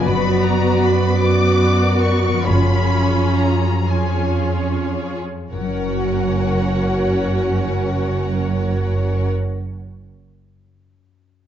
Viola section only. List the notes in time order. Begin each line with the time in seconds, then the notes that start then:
0.06 B3 F#4
1.21 B3 F#4
2.46 C#4 F4
3.86 C#4 F4
5.52 C#4 F#4